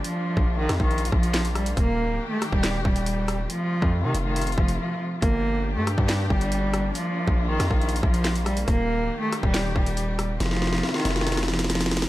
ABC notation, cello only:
X:1
M:4/4
L:1/16
Q:1/4=139
K:Bb
V:1 name="Cello" clef=bass
F,4- F, E,2 E,3 F,4 G,2 | B,4- B, A,2 G,3 G,6 | F,4- F, E,2 E,3 F,2 F,2 z2 | B,4- B, A,2 G,3 G,6 |
F,4- F, E,2 E,3 F,4 G,2 | B,4- B, A,2 G,3 G,6 | F,4- F, E,2 E,3 F,2 F,2 z2 |]